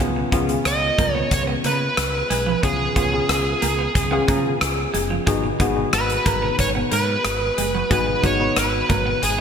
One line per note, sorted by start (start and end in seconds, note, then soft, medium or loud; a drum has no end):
0.00 0.23 C#2 medium
0.00 0.20 B3 medium
0.00 0.13 C#4 medium
0.00 0.20 C#4 medium
0.00 0.20 F4 medium
0.00 0.21 G#4 medium
0.00 kick loud
0.16 muted clean electric guitar stroke soft
0.32 0.56 C#2 medium
0.32 0.42 B3 medium
0.32 0.46 B3 medium
0.32 0.43 C#4 medium
0.32 0.43 F4 medium
0.32 0.43 G#4 medium
0.32 kick medium
0.32 closed hi-hat medium
0.49 1.31 B3 medium
0.49 1.31 C#4 medium
0.49 1.31 F4 medium
0.49 1.31 G#4 medium
0.49 closed hi-hat medium
0.65 0.89 C#2 loud
0.65 1.13 D#5 loud
0.65 muted clean electric guitar stroke soft
0.65 cross-stick medium
0.65 closed hi-hat medium
0.98 1.22 C#2 medium
0.98 1.12 A#3 medium
0.98 kick medium
0.98 closed hi-hat medium
1.13 1.29 B3 medium
1.13 1.28 C#5 loud
1.31 1.55 C#2 medium
1.31 1.42 C#5 medium
1.31 muted clean electric guitar stroke soft
1.31 kick medium
1.31 closed hi-hat medium
1.47 1.61 B3 medium
1.64 1.88 C#3 medium
1.64 1.78 A#3 medium
1.64 2.60 B4 medium
1.64 closed hi-hat medium
1.97 2.21 C#2 medium
1.97 muted clean electric guitar stroke soft
1.97 cross-stick loud
1.97 closed hi-hat medium
2.30 2.54 B1 medium
2.30 2.44 G#3 medium
2.30 closed hi-hat medium
2.46 2.60 F3 medium
2.63 2.87 C#2 medium
2.63 2.83 B3 medium
2.63 2.77 C#4 medium
2.63 2.84 C#4 medium
2.63 2.84 F4 medium
2.63 2.84 G#4 medium
2.63 4.58 G#4 medium
2.63 kick loud
2.63 closed hi-hat medium
2.79 muted clean electric guitar stroke soft
2.96 3.20 C#2 medium
2.96 3.10 B3 medium
2.96 3.06 B3 medium
2.96 3.07 C#4 medium
2.96 3.07 F4 medium
2.96 3.07 G#4 medium
2.96 kick medium
2.96 closed hi-hat medium
3.13 3.74 B3 medium
3.13 3.74 C#4 medium
3.13 3.74 F4 medium
3.13 3.75 G#4 medium
3.29 3.53 C#2 medium
3.29 muted clean electric guitar stroke soft
3.29 cross-stick loud
3.29 closed hi-hat medium
3.62 3.86 C#2 medium
3.62 3.76 A#3 medium
3.62 closed hi-hat medium
3.79 3.92 B3 medium
3.95 4.19 C#2 loud
3.95 muted clean electric guitar stroke soft
3.95 kick medium
3.95 closed hi-hat medium
4.11 4.25 B3 medium
4.11 4.83 B3 medium
4.11 4.83 C#4 medium
4.11 4.83 F4 medium
4.11 4.84 G#4 medium
4.28 4.52 C#3 medium
4.28 4.42 A#3 medium
4.28 kick medium
4.28 closed hi-hat medium
4.61 4.85 C#2 medium
4.61 muted clean electric guitar stroke soft
4.61 cross-stick loud
4.61 closed hi-hat medium
4.94 5.18 F#1 medium
4.94 5.08 G#3 medium
4.94 closed hi-hat medium
5.10 5.24 F3 medium
5.27 5.51 G#1 medium
5.27 5.40 G#3 medium
5.27 5.47 B3 medium
5.27 5.48 D#4 medium
5.27 5.48 F#4 medium
5.27 5.48 G#4 medium
5.27 kick loud
5.27 closed hi-hat medium
5.44 muted clean electric guitar stroke soft
5.60 5.84 G#1 medium
5.60 5.70 B3 medium
5.60 5.74 B3 medium
5.60 5.70 D#4 medium
5.60 5.71 F#4 medium
5.60 5.71 G#4 medium
5.60 kick medium
5.60 closed hi-hat medium
5.76 6.58 B3 medium
5.76 6.58 D#4 medium
5.76 6.58 F#4 medium
5.76 6.58 G#4 medium
5.93 6.17 G#1 medium
5.93 6.55 B4 medium
5.93 muted clean electric guitar stroke soft
5.93 cross-stick loud
5.93 closed hi-hat medium
6.10 closed hi-hat soft
6.26 6.50 G#1 medium
6.26 6.39 A#3 medium
6.26 kick medium
6.26 closed hi-hat medium
6.42 6.56 B3 medium
6.59 6.83 G#1 medium
6.59 6.69 C#5 medium
6.59 muted clean electric guitar stroke soft
6.59 kick medium
6.59 closed hi-hat medium
6.75 6.89 B3 medium
6.91 7.16 G#2 medium
6.91 7.05 A#3 medium
6.91 7.91 B4 medium
6.91 closed hi-hat medium
7.25 7.49 G#1 medium
7.25 muted clean electric guitar stroke soft
7.25 cross-stick loud
7.25 closed hi-hat loud
7.58 7.82 F#1 medium
7.58 7.72 G#3 medium
7.58 closed hi-hat medium
7.75 7.88 F#3 medium
7.90 8.15 G#1 medium
7.90 8.04 G#3 medium
7.90 8.11 B3 medium
7.90 8.11 D#4 medium
7.90 8.11 F#4 medium
7.90 8.11 G#4 medium
7.90 8.25 B4 medium
7.90 kick loud
7.90 closed hi-hat medium
8.07 muted clean electric guitar stroke soft
8.23 8.48 G#1 medium
8.23 8.33 B3 medium
8.23 8.37 B3 medium
8.23 8.34 D#4 medium
8.23 8.34 F#4 medium
8.23 8.34 B4 medium
8.23 8.58 C#5 medium
8.23 kick medium
8.23 closed hi-hat medium
8.40 9.01 B3 medium
8.40 9.01 D#4 medium
8.40 9.02 F#4 medium
8.40 9.02 B4 medium
8.56 8.81 G#1 medium
8.56 9.24 B4 medium
8.56 muted clean electric guitar stroke soft
8.56 cross-stick loud
8.56 closed hi-hat medium
8.89 9.14 G#1 medium
8.89 9.03 A#3 medium
8.89 kick medium
8.89 closed hi-hat medium
9.06 9.20 B3 medium
9.22 9.41 G#1 medium
9.22 9.41 G#4 medium
9.22 muted clean electric guitar stroke soft
9.22 closed hi-hat medium